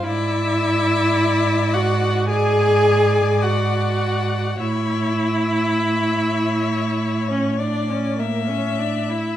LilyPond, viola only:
\new Staff \with { instrumentName = "Viola" } { \time 4/4 \key a \phrygian \tempo 4 = 51 e'4. fis'8 gis'4 fis'4 | e'2~ e'16 cis'16 d'16 cis'16 bes16 cis'16 d'16 e'16 | }